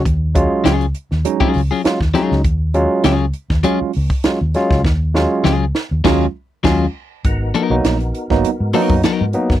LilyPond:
<<
  \new Staff \with { instrumentName = "Tonewheel organ" } { \time 4/4 \key ees \minor \tempo 4 = 100 r1 | r1 | r1 | <ces' ees' ges' bes'>1 | }
  \new Staff \with { instrumentName = "Clean electric guitar" } { \time 4/4 \key ees \minor r4 <ges des' f' aes'>16 r4 <ges des' f' aes'>16 r16 <ges des' f' aes'>16 r8 <ges des' f' aes'>16 r16 | r4 <ges des' f' aes'>16 r8. <ges des' f' aes'>16 r4. r16 | r4 <ges des' f' aes'>16 r8. <ges des' f' aes'>8 r8 <ges des' f' aes'>8 r8 | r8 <ges ces' ees' bes'>16 r4. r16 <ges ces' ees' bes'>16 r16 <ges ces' ees' bes'>16 r8. | }
  \new Staff \with { instrumentName = "Tine electric piano" } { \time 4/4 \key ees \minor r8 <ges aes des' f'>8. r8. <ges aes des' ees'>8 r8 <ges aes des' f'>16 r16 <ges aes des' ees'>8 | r8 <ges aes des' f'>8. r8. <ges aes des' f'>8 r8 <ges aes des' f'>16 r16 <ges aes des' f'>8 | r8 <ges aes des' f'>8. r8. <ges aes des' f'>8 r8 <ges aes des' f'>8 r8 | r8. <ges bes ces' ees'>8 r8 <ges bes ces' ees'>16 r8 <ges bes ces' ees'>8 r8 <ges bes ces' ees'>16 r16 | }
  \new Staff \with { instrumentName = "Fingered electric bass" } { \clef bass \time 4/4 \key ees \minor ees,8. r16 des,8 r16 ees,16 r8 des,16 r8 ees,16 r16 des,16 | ees,8. r16 des,8 r16 ees,16 r8 des,16 r8 ees,16 r16 des,16 | ees,8. r16 des,8 r16 ees,16 ees,8 r8 ees,8 r8 | aes,,8 r16 ces,16 bes,,8 r16 aes,,16 r16 aes,16 r16 ges,16 r16 aes,16 r16 ges,,16 | }
  \new DrumStaff \with { instrumentName = "Drums" } \drummode { \time 4/4 <hh bd>8 <hh bd>8 <hh sn>16 hh16 hh16 sn16 hh16 bd16 hho8 <hh sn>16 <bd sn>16 <hh sn>16 sn16 | <hh bd>8 hh8 <hh sn>8 hh16 <bd sn>16 hh8 hho16 bd16 <hh sn>8 <hh sn>16 <bd sn>16 | <bd sn>8 sn8 sn8 sn8 <cymc bd sn>4 <cymc bd sn>4 | <hh bd>8 hh8 <hh sn>16 hh16 hh16 <bd sn>16 hh8 hho16 bd16 <hh sn>8 hh16 <bd sn>16 | }
>>